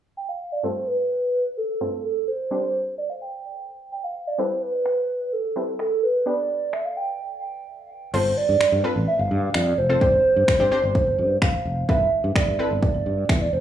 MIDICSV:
0, 0, Header, 1, 6, 480
1, 0, Start_track
1, 0, Tempo, 468750
1, 653, Time_signature, 4, 2, 24, 8
1, 13930, End_track
2, 0, Start_track
2, 0, Title_t, "Soft synth lead"
2, 0, Program_c, 0, 80
2, 174, Note_on_c, 0, 79, 103
2, 285, Note_off_c, 0, 79, 0
2, 295, Note_on_c, 0, 77, 97
2, 533, Note_on_c, 0, 74, 90
2, 549, Note_off_c, 0, 77, 0
2, 654, Note_on_c, 0, 72, 99
2, 669, Note_off_c, 0, 74, 0
2, 893, Note_on_c, 0, 71, 103
2, 908, Note_off_c, 0, 72, 0
2, 1606, Note_off_c, 0, 71, 0
2, 1612, Note_on_c, 0, 69, 90
2, 2059, Note_off_c, 0, 69, 0
2, 2090, Note_on_c, 0, 69, 87
2, 2331, Note_on_c, 0, 72, 90
2, 2346, Note_off_c, 0, 69, 0
2, 2566, Note_off_c, 0, 72, 0
2, 2572, Note_on_c, 0, 72, 96
2, 3019, Note_off_c, 0, 72, 0
2, 3052, Note_on_c, 0, 74, 86
2, 3164, Note_off_c, 0, 74, 0
2, 3171, Note_on_c, 0, 77, 86
2, 3225, Note_off_c, 0, 77, 0
2, 3292, Note_on_c, 0, 79, 95
2, 3739, Note_off_c, 0, 79, 0
2, 4015, Note_on_c, 0, 79, 102
2, 4134, Note_on_c, 0, 77, 98
2, 4150, Note_off_c, 0, 79, 0
2, 4375, Note_on_c, 0, 74, 92
2, 4390, Note_off_c, 0, 77, 0
2, 4494, Note_on_c, 0, 72, 101
2, 4509, Note_off_c, 0, 74, 0
2, 4734, Note_on_c, 0, 71, 105
2, 4750, Note_off_c, 0, 72, 0
2, 5454, Note_on_c, 0, 69, 96
2, 5470, Note_off_c, 0, 71, 0
2, 5929, Note_off_c, 0, 69, 0
2, 5935, Note_on_c, 0, 69, 89
2, 6173, Note_on_c, 0, 71, 89
2, 6189, Note_off_c, 0, 69, 0
2, 6416, Note_on_c, 0, 74, 102
2, 6431, Note_off_c, 0, 71, 0
2, 6894, Note_on_c, 0, 76, 90
2, 6910, Note_off_c, 0, 74, 0
2, 7014, Note_on_c, 0, 77, 93
2, 7029, Note_off_c, 0, 76, 0
2, 7133, Note_on_c, 0, 79, 93
2, 7148, Note_off_c, 0, 77, 0
2, 7613, Note_off_c, 0, 79, 0
2, 8333, Note_on_c, 0, 72, 103
2, 8573, Note_on_c, 0, 74, 110
2, 8588, Note_off_c, 0, 72, 0
2, 9053, Note_off_c, 0, 74, 0
2, 9293, Note_on_c, 0, 76, 109
2, 9413, Note_on_c, 0, 77, 106
2, 9428, Note_off_c, 0, 76, 0
2, 9648, Note_off_c, 0, 77, 0
2, 9654, Note_on_c, 0, 77, 102
2, 9773, Note_on_c, 0, 74, 104
2, 9789, Note_off_c, 0, 77, 0
2, 10007, Note_off_c, 0, 74, 0
2, 10014, Note_on_c, 0, 72, 111
2, 11652, Note_off_c, 0, 72, 0
2, 11693, Note_on_c, 0, 77, 107
2, 12140, Note_off_c, 0, 77, 0
2, 12173, Note_on_c, 0, 76, 111
2, 12619, Note_off_c, 0, 76, 0
2, 12653, Note_on_c, 0, 74, 95
2, 13099, Note_off_c, 0, 74, 0
2, 13133, Note_on_c, 0, 74, 98
2, 13613, Note_on_c, 0, 76, 96
2, 13629, Note_off_c, 0, 74, 0
2, 13728, Note_off_c, 0, 76, 0
2, 13734, Note_on_c, 0, 74, 89
2, 13845, Note_off_c, 0, 74, 0
2, 13853, Note_on_c, 0, 72, 89
2, 13930, Note_off_c, 0, 72, 0
2, 13930, End_track
3, 0, Start_track
3, 0, Title_t, "Synth pluck"
3, 0, Program_c, 1, 84
3, 648, Note_on_c, 1, 43, 64
3, 651, Note_on_c, 1, 57, 59
3, 653, Note_on_c, 1, 60, 59
3, 656, Note_on_c, 1, 65, 58
3, 658, Note_on_c, 1, 69, 70
3, 1827, Note_off_c, 1, 43, 0
3, 1828, Note_off_c, 1, 57, 0
3, 1829, Note_off_c, 1, 60, 0
3, 1831, Note_off_c, 1, 65, 0
3, 1832, Note_off_c, 1, 69, 0
3, 1850, Note_on_c, 1, 43, 45
3, 1852, Note_on_c, 1, 57, 43
3, 1853, Note_on_c, 1, 60, 44
3, 1854, Note_on_c, 1, 65, 44
3, 1855, Note_on_c, 1, 69, 51
3, 2558, Note_off_c, 1, 60, 0
3, 2568, Note_on_c, 1, 55, 64
3, 2571, Note_on_c, 1, 60, 59
3, 2572, Note_off_c, 1, 43, 0
3, 2572, Note_off_c, 1, 57, 0
3, 2573, Note_on_c, 1, 62, 60
3, 2574, Note_off_c, 1, 65, 0
3, 2574, Note_off_c, 1, 69, 0
3, 2576, Note_on_c, 1, 67, 58
3, 2578, Note_on_c, 1, 72, 74
3, 4452, Note_off_c, 1, 55, 0
3, 4453, Note_off_c, 1, 60, 0
3, 4455, Note_off_c, 1, 62, 0
3, 4456, Note_off_c, 1, 67, 0
3, 4457, Note_off_c, 1, 72, 0
3, 4489, Note_on_c, 1, 55, 64
3, 4492, Note_on_c, 1, 60, 58
3, 4494, Note_on_c, 1, 64, 60
3, 4497, Note_on_c, 1, 69, 59
3, 4499, Note_on_c, 1, 71, 71
3, 5667, Note_off_c, 1, 55, 0
3, 5668, Note_off_c, 1, 60, 0
3, 5669, Note_off_c, 1, 64, 0
3, 5671, Note_off_c, 1, 69, 0
3, 5672, Note_off_c, 1, 71, 0
3, 5691, Note_on_c, 1, 55, 50
3, 5692, Note_on_c, 1, 60, 46
3, 5694, Note_on_c, 1, 64, 45
3, 5695, Note_on_c, 1, 69, 45
3, 5696, Note_on_c, 1, 71, 51
3, 6407, Note_off_c, 1, 71, 0
3, 6409, Note_on_c, 1, 59, 65
3, 6412, Note_off_c, 1, 55, 0
3, 6412, Note_on_c, 1, 62, 61
3, 6413, Note_off_c, 1, 60, 0
3, 6413, Note_off_c, 1, 64, 0
3, 6414, Note_off_c, 1, 69, 0
3, 6415, Note_on_c, 1, 67, 61
3, 6419, Note_on_c, 1, 71, 68
3, 8293, Note_off_c, 1, 59, 0
3, 8294, Note_off_c, 1, 62, 0
3, 8296, Note_off_c, 1, 67, 0
3, 8298, Note_off_c, 1, 71, 0
3, 8331, Note_on_c, 1, 60, 74
3, 8332, Note_on_c, 1, 65, 68
3, 8334, Note_on_c, 1, 69, 66
3, 8336, Note_on_c, 1, 72, 82
3, 8877, Note_off_c, 1, 60, 0
3, 8878, Note_off_c, 1, 65, 0
3, 8879, Note_off_c, 1, 69, 0
3, 8880, Note_off_c, 1, 72, 0
3, 9050, Note_on_c, 1, 60, 72
3, 9052, Note_on_c, 1, 65, 68
3, 9053, Note_on_c, 1, 69, 72
3, 9055, Note_on_c, 1, 71, 86
3, 9779, Note_off_c, 1, 60, 0
3, 9779, Note_off_c, 1, 65, 0
3, 9780, Note_off_c, 1, 69, 0
3, 9781, Note_off_c, 1, 71, 0
3, 10131, Note_on_c, 1, 60, 77
3, 10133, Note_on_c, 1, 65, 66
3, 10135, Note_on_c, 1, 69, 69
3, 10136, Note_on_c, 1, 72, 86
3, 10223, Note_off_c, 1, 60, 0
3, 10224, Note_off_c, 1, 65, 0
3, 10225, Note_off_c, 1, 69, 0
3, 10226, Note_off_c, 1, 72, 0
3, 10251, Note_on_c, 1, 60, 77
3, 10253, Note_on_c, 1, 62, 66
3, 10254, Note_on_c, 1, 67, 67
3, 10256, Note_on_c, 1, 72, 79
3, 10707, Note_off_c, 1, 60, 0
3, 10707, Note_off_c, 1, 62, 0
3, 10708, Note_off_c, 1, 67, 0
3, 10709, Note_off_c, 1, 72, 0
3, 10851, Note_on_c, 1, 60, 94
3, 10852, Note_on_c, 1, 62, 83
3, 10854, Note_on_c, 1, 67, 79
3, 10856, Note_on_c, 1, 72, 104
3, 10943, Note_off_c, 1, 60, 0
3, 10944, Note_off_c, 1, 62, 0
3, 10944, Note_off_c, 1, 67, 0
3, 10945, Note_off_c, 1, 72, 0
3, 10971, Note_on_c, 1, 60, 88
3, 10973, Note_on_c, 1, 62, 81
3, 10974, Note_on_c, 1, 67, 83
3, 10976, Note_on_c, 1, 72, 101
3, 11699, Note_off_c, 1, 60, 0
3, 11700, Note_off_c, 1, 62, 0
3, 11701, Note_off_c, 1, 67, 0
3, 11702, Note_off_c, 1, 72, 0
3, 12171, Note_on_c, 1, 60, 74
3, 12173, Note_on_c, 1, 64, 67
3, 12175, Note_on_c, 1, 69, 65
3, 12176, Note_on_c, 1, 71, 86
3, 12718, Note_off_c, 1, 60, 0
3, 12718, Note_off_c, 1, 64, 0
3, 12719, Note_off_c, 1, 69, 0
3, 12720, Note_off_c, 1, 71, 0
3, 12891, Note_on_c, 1, 60, 75
3, 12893, Note_on_c, 1, 64, 68
3, 12895, Note_on_c, 1, 69, 69
3, 12896, Note_on_c, 1, 71, 83
3, 13619, Note_off_c, 1, 60, 0
3, 13620, Note_off_c, 1, 64, 0
3, 13621, Note_off_c, 1, 69, 0
3, 13622, Note_off_c, 1, 71, 0
3, 13930, End_track
4, 0, Start_track
4, 0, Title_t, "Fretless electric bass"
4, 0, Program_c, 2, 35
4, 8333, Note_on_c, 2, 31, 103
4, 8516, Note_off_c, 2, 31, 0
4, 8693, Note_on_c, 2, 43, 92
4, 8785, Note_off_c, 2, 43, 0
4, 8932, Note_on_c, 2, 43, 92
4, 9024, Note_off_c, 2, 43, 0
4, 9173, Note_on_c, 2, 33, 87
4, 9265, Note_off_c, 2, 33, 0
4, 9413, Note_on_c, 2, 31, 91
4, 9505, Note_off_c, 2, 31, 0
4, 9533, Note_on_c, 2, 43, 99
4, 9717, Note_off_c, 2, 43, 0
4, 9773, Note_on_c, 2, 41, 93
4, 9957, Note_off_c, 2, 41, 0
4, 10013, Note_on_c, 2, 29, 87
4, 10197, Note_off_c, 2, 29, 0
4, 10254, Note_on_c, 2, 31, 102
4, 10437, Note_off_c, 2, 31, 0
4, 10613, Note_on_c, 2, 43, 90
4, 10705, Note_off_c, 2, 43, 0
4, 10853, Note_on_c, 2, 43, 94
4, 10945, Note_off_c, 2, 43, 0
4, 11093, Note_on_c, 2, 31, 88
4, 11185, Note_off_c, 2, 31, 0
4, 11334, Note_on_c, 2, 31, 90
4, 11453, Note_on_c, 2, 43, 92
4, 11468, Note_off_c, 2, 31, 0
4, 11636, Note_off_c, 2, 43, 0
4, 11933, Note_on_c, 2, 29, 89
4, 12116, Note_off_c, 2, 29, 0
4, 12174, Note_on_c, 2, 31, 100
4, 12357, Note_off_c, 2, 31, 0
4, 12533, Note_on_c, 2, 43, 96
4, 12625, Note_off_c, 2, 43, 0
4, 12773, Note_on_c, 2, 43, 86
4, 12865, Note_off_c, 2, 43, 0
4, 13013, Note_on_c, 2, 31, 86
4, 13105, Note_off_c, 2, 31, 0
4, 13253, Note_on_c, 2, 31, 90
4, 13345, Note_off_c, 2, 31, 0
4, 13373, Note_on_c, 2, 43, 91
4, 13557, Note_off_c, 2, 43, 0
4, 13612, Note_on_c, 2, 40, 92
4, 13796, Note_off_c, 2, 40, 0
4, 13853, Note_on_c, 2, 29, 89
4, 13930, Note_off_c, 2, 29, 0
4, 13930, End_track
5, 0, Start_track
5, 0, Title_t, "Muted fretless electric bass strokes"
5, 8814, Note_on_c, 9, 29, 46
5, 8916, Note_off_c, 9, 29, 0
5, 13930, End_track
6, 0, Start_track
6, 0, Title_t, "Drums"
6, 4973, Note_on_c, 9, 26, 100
6, 5075, Note_off_c, 9, 26, 0
6, 5932, Note_on_c, 9, 26, 104
6, 6035, Note_off_c, 9, 26, 0
6, 6893, Note_on_c, 9, 26, 98
6, 6995, Note_off_c, 9, 26, 0
6, 8333, Note_on_c, 9, 49, 89
6, 8436, Note_off_c, 9, 49, 0
6, 8813, Note_on_c, 9, 26, 101
6, 8915, Note_off_c, 9, 26, 0
6, 9772, Note_on_c, 9, 26, 113
6, 9875, Note_off_c, 9, 26, 0
6, 10254, Note_on_c, 9, 36, 113
6, 10356, Note_off_c, 9, 36, 0
6, 10731, Note_on_c, 9, 36, 105
6, 10733, Note_on_c, 9, 26, 101
6, 10834, Note_off_c, 9, 36, 0
6, 10835, Note_off_c, 9, 26, 0
6, 11213, Note_on_c, 9, 36, 109
6, 11316, Note_off_c, 9, 36, 0
6, 11692, Note_on_c, 9, 26, 112
6, 11692, Note_on_c, 9, 36, 104
6, 11794, Note_off_c, 9, 36, 0
6, 11795, Note_off_c, 9, 26, 0
6, 12174, Note_on_c, 9, 36, 111
6, 12276, Note_off_c, 9, 36, 0
6, 12651, Note_on_c, 9, 36, 110
6, 12653, Note_on_c, 9, 26, 103
6, 12754, Note_off_c, 9, 36, 0
6, 12755, Note_off_c, 9, 26, 0
6, 13133, Note_on_c, 9, 36, 110
6, 13235, Note_off_c, 9, 36, 0
6, 13612, Note_on_c, 9, 26, 115
6, 13612, Note_on_c, 9, 36, 109
6, 13714, Note_off_c, 9, 26, 0
6, 13714, Note_off_c, 9, 36, 0
6, 13930, End_track
0, 0, End_of_file